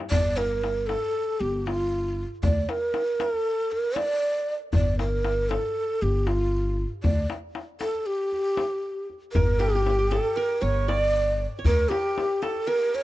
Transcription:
0.00 0.18 G2 medium
0.10 0.94 G1 medium
0.10 0.39 D5 loud
0.10 darbuka dum medium
0.37 0.88 A#4 medium
0.37 darbuka tek medium
0.64 darbuka tek medium
0.87 1.42 A4 medium
0.87 darbuka tek medium
1.02 darbuka ka soft
1.40 2.23 G1 medium
1.40 1.68 G4 medium
1.67 2.24 F4 medium
1.67 darbuka tek medium
2.43 2.63 D2 loud
2.43 2.71 D5 medium
2.43 darbuka dum medium
2.69 3.21 A#4 medium
2.69 darbuka tek medium
2.94 darbuka tek medium
3.20 3.32 A#4 medium
3.20 darbuka tek medium
3.32 3.73 A4 medium
3.32 darbuka ka soft
3.71 3.98 A#4 medium
3.71 darbuka ka soft
3.96 4.54 D5 loud
3.96 darbuka tek medium
4.73 5.56 G1 medium
4.73 4.97 D5 medium
4.73 darbuka dum loud
4.99 5.51 A#4 medium
4.99 darbuka tek medium
5.24 darbuka tek medium
5.49 6.04 A4 medium
5.49 darbuka tek medium
5.63 darbuka ka soft
6.02 6.84 G1 medium
6.02 6.29 G4 medium
6.02 darbuka ka soft
6.27 6.85 F4 medium
6.27 darbuka tek medium
7.03 7.24 D2 medium
7.03 7.27 D5 medium
7.03 darbuka dum medium
7.30 darbuka tek medium
7.55 darbuka tek medium
7.81 8.08 A4 medium
7.81 darbuka tek medium
7.94 darbuka ka soft
8.06 9.09 G4 medium
8.32 darbuka ka soft
8.57 darbuka tek medium
9.10 darbuka ka soft
9.33 10.17 G1 medium
9.33 9.61 A#4 medium
9.33 10.17 A#4 medium
9.33 darbuka dum loud
9.60 9.68 G4 medium
9.60 10.13 G4 medium
9.60 darbuka tek medium
9.69 9.75 G4 medium
9.75 9.82 G4 medium
9.82 9.89 G4 medium
9.87 9.98 G4 medium
9.87 darbuka tek medium
9.99 11.24 G4 medium
10.11 10.38 A4 medium
10.11 10.43 A4 medium
10.11 darbuka tek medium
10.26 darbuka ka soft
10.36 10.64 A#4 medium
10.36 11.49 A#4 medium
10.61 11.45 G1 medium
10.61 10.94 C#5 medium
10.61 10.90 C#5 medium
10.61 darbuka ka soft
10.88 11.46 D5 loud
10.88 11.65 D5 medium
10.88 darbuka tek medium
11.59 12.61 C#5 medium
11.64 11.85 D2 medium
11.64 12.48 A#4 medium
11.64 11.90 A#4 loud
11.64 darbuka dum medium
11.89 12.44 G4 medium
11.89 13.03 G4 medium
11.89 darbuka tek medium
12.18 darbuka tek medium
12.42 12.73 A4 medium
12.42 12.69 A4 medium
12.42 darbuka tek medium
12.55 darbuka ka soft
12.67 13.03 A#4 medium
12.67 12.96 A#4 medium
12.94 13.03 C#5 medium
12.94 darbuka ka soft

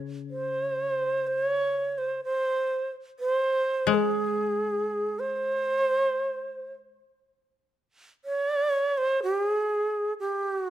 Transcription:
0.00 2.19 C#3 soft
0.30 1.27 C5 medium
1.27 1.44 C5 medium
1.44 1.99 C#5 medium
1.98 2.21 C5 medium
2.24 2.91 C5 medium
3.19 3.95 C5 medium
3.87 6.95 G#3 medium
3.94 5.21 G#4 medium
5.19 6.73 C5 medium
8.25 8.99 C#5 medium
8.97 9.20 C5 medium
9.23 9.45 G4 medium
9.45 10.13 G#4 medium
10.20 10.70 G4 medium

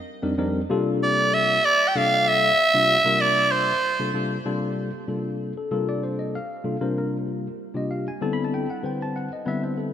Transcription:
0.22 0.34 F2 medium
0.22 0.34 G3 medium
0.22 0.34 C4 medium
0.22 0.34 D4 medium
0.22 0.34 D#4 medium
0.22 0.34 A#4 medium
0.38 0.60 F2 medium
0.38 0.60 G3 medium
0.38 0.60 C4 medium
0.38 0.60 D4 medium
0.38 0.60 D#4 medium
0.38 0.60 A#4 loud
0.69 1.57 C3 loud
0.69 1.57 G3 medium
0.69 1.57 A#3 medium
0.69 1.57 D4 medium
0.69 1.58 F4 medium
0.69 1.58 A4 loud
1.03 1.35 D5 medium
1.34 1.67 E5 loud
1.65 1.89 D5 loud
1.88 1.98 G5 medium
1.95 2.50 C3 medium
1.95 2.50 G3 medium
1.95 2.50 A#3 medium
1.95 2.50 D4 medium
1.95 2.50 F4 medium
1.95 2.50 A4 medium
1.95 2.30 F5 loud
2.28 3.22 E5 loud
2.74 2.95 C3 medium
2.74 2.96 G3 medium
2.74 2.96 A#3 medium
2.74 2.96 D4 medium
2.74 2.96 F4 medium
2.74 2.96 G4 medium
3.05 3.70 C3 medium
3.05 3.71 G3 medium
3.05 3.70 A#3 medium
3.05 3.71 D4 medium
3.05 3.71 F4 medium
3.05 3.71 A#4 loud
3.21 3.53 D5 loud
3.52 4.22 C5 medium
3.99 4.10 C3 medium
3.99 4.10 G3 medium
3.99 4.10 A#3 medium
3.99 4.10 D4 medium
3.99 4.10 F4 medium
3.99 4.10 A4 medium
4.14 4.36 C3 medium
4.14 4.36 G3 medium
4.14 4.36 A#3 medium
4.14 4.36 D4 medium
4.14 4.36 F4 medium
4.14 4.37 A4 medium
4.45 4.89 C3 medium
4.45 4.89 G3 medium
4.45 4.89 A#3 medium
4.45 4.89 D4 medium
4.45 4.90 F4 medium
4.45 4.90 A4 loud
5.07 5.52 C3 medium
5.07 5.52 G3 medium
5.07 5.52 A#3 medium
5.07 5.52 D4 medium
5.07 5.52 F4 medium
5.07 5.52 A4 medium
5.58 5.70 A4 medium
5.71 6.36 C3 medium
5.71 6.37 G3 medium
5.71 6.37 A#3 medium
5.71 6.37 D4 medium
5.71 6.37 F4 medium
5.71 6.37 A4 medium
5.71 5.87 A#4 medium
5.89 6.03 D5 medium
6.03 6.18 C5 medium
6.19 6.34 D#5 medium
6.35 6.78 F5 medium
6.64 6.75 C3 medium
6.64 6.75 G3 medium
6.64 6.76 A#3 medium
6.64 6.76 D4 medium
6.64 6.76 F4 medium
6.64 6.76 A4 medium
6.81 7.46 C3 medium
6.81 7.46 G3 medium
6.81 7.47 A#3 medium
6.81 7.46 D4 medium
6.81 7.46 F4 medium
6.81 6.97 A#4 medium
6.81 6.97 C5 medium
6.98 7.16 A#4 medium
7.74 8.07 C3 medium
7.74 8.07 G3 medium
7.74 8.07 A#3 medium
7.74 8.07 D4 medium
7.74 8.08 F4 medium
7.74 8.08 G4 medium
7.74 7.91 D#5 medium
7.91 8.06 F5 medium
8.08 8.22 G#5 medium
8.21 8.65 D3 medium
8.21 8.65 G3 medium
8.21 8.65 B3 medium
8.21 8.65 C4 medium
8.21 8.65 E4 medium
8.21 8.66 A4 medium
8.21 8.32 A5 medium
8.33 8.43 B5 loud
8.45 8.54 A5 medium
8.54 8.69 G5 medium
8.70 8.85 F#5 medium
8.83 9.28 D3 medium
8.83 9.27 G3 medium
8.83 9.28 C4 medium
8.83 9.28 E4 medium
8.83 9.28 B4 medium
8.83 9.28 C5 medium
8.83 9.00 G5 medium
9.02 9.16 A5 loud
9.16 9.31 F#5 medium
9.33 9.47 D#5 medium
9.45 9.93 D3 medium
9.45 9.93 G3 medium
9.45 9.93 B3 medium
9.45 9.93 C4 medium
9.45 9.93 E4 medium
9.45 9.93 B4 medium
9.45 9.63 E5 medium
9.63 9.78 C5 medium
9.78 9.93 A4 medium

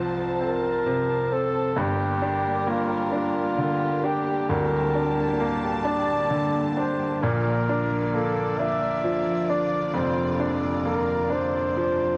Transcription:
0.00 1.73 C2 medium
0.00 0.86 C3 medium
0.00 1.73 F3 medium
0.00 0.40 C4 medium
0.00 0.41 C4 medium
0.00 1.73 C4 medium
0.00 0.85 F4 medium
0.00 0.17 A4 medium
0.00 0.14 C5 medium
0.00 1.73 C5 medium
0.00 1.73 A5 medium
0.18 0.41 A4 medium
0.41 1.31 C4 medium
0.41 0.62 C4 medium
0.41 1.35 A#4 medium
0.64 1.08 C4 medium
0.86 1.74 C3 medium
0.86 1.30 F4 medium
1.09 1.77 C4 medium
1.32 1.76 C4 medium
1.32 1.86 F4 medium
1.32 1.80 A4 medium
1.55 1.77 A4 medium
1.76 4.46 G1 medium
1.76 4.45 G2 medium
1.76 12.17 D3 medium
1.76 7.19 G3 medium
1.76 2.00 A#3 medium
1.76 12.17 A#3 medium
1.76 7.19 G4 medium
1.76 2.91 G4 medium
1.76 2.70 G4 medium
1.76 4.47 A#4 medium
2.00 2.46 A#3 medium
2.22 3.11 D4 medium
2.22 2.68 D4 medium
2.46 3.13 A#3 medium
2.67 4.45 A#3 medium
2.67 3.59 D4 medium
2.67 3.14 F4 medium
2.92 3.13 G4 medium
3.12 3.36 A#3 medium
3.12 4.02 D4 medium
3.12 4.07 F4 medium
3.12 4.26 G4 medium
3.36 3.82 A#3 medium
3.58 5.36 D3 medium
3.58 4.05 D4 medium
3.83 4.50 A#3 medium
4.04 4.94 D4 medium
4.04 4.96 D4 medium
4.04 4.51 G4 medium
4.28 4.50 G4 medium
4.49 7.18 D1 medium
4.49 7.18 D2 medium
4.49 4.73 A#3 medium
4.49 5.62 G4 medium
4.49 5.59 A#4 loud
4.49 7.20 A5 medium
4.74 5.18 A#3 medium
4.95 5.83 D4 medium
4.95 5.41 D4 soft
5.18 5.86 A#3 medium
5.40 7.18 A#3 medium
5.40 6.32 D4 medium
5.63 5.86 G4 medium
5.85 6.10 A#3 medium
5.85 6.76 D4 medium
5.85 6.98 G4 medium
5.85 6.73 D5 loud
6.10 6.55 A#3 medium
6.30 7.19 D3 medium
6.30 6.77 D4 medium
6.55 7.69 A#3 medium
6.77 7.21 D4 medium
6.77 7.23 D4 medium
6.77 7.24 C5 medium
7.00 7.31 G4 medium
7.22 9.92 A#1 medium
7.22 9.91 A#2 medium
7.22 12.17 F3 medium
7.22 7.45 F3 medium
7.22 8.35 D4 medium
7.22 12.17 F4 medium
7.22 8.16 A#4 medium
7.22 12.17 D5 medium
7.47 7.90 F3 medium
7.69 8.13 A#3 medium
7.69 8.58 D4 medium
7.91 8.58 F3 medium
8.14 9.92 A#3 medium
8.14 9.03 A#3 medium
8.14 8.60 A4 medium
8.36 8.59 D4 medium
8.59 8.81 F3 medium
8.59 9.48 D4 medium
8.59 9.73 D4 medium
8.59 9.51 E5 loud
9.04 10.82 F3 medium
9.04 9.50 A#3 medium
9.28 9.94 F3 medium
9.49 10.41 A#3 medium
9.49 10.38 D4 medium
9.49 9.94 D5 loud
9.74 9.95 D4 medium
9.93 12.17 F1 medium
9.93 12.17 F2 medium
9.93 10.18 F3 medium
9.93 11.09 D4 medium
9.93 10.55 C5 medium
10.19 10.63 F3 medium
10.40 10.86 A#3 medium
10.40 11.29 D4 medium
10.65 11.31 F3 medium
10.85 12.17 A#3 medium
10.85 11.77 A#3 medium
10.85 11.33 A#4 medium
11.11 11.32 D4 medium
11.30 11.55 F3 medium
11.30 12.17 D4 medium
11.30 12.17 C5 medium
11.56 12.00 F3 medium
11.77 12.17 F3 medium
11.77 12.17 A#3 medium
12.02 12.17 F3 medium

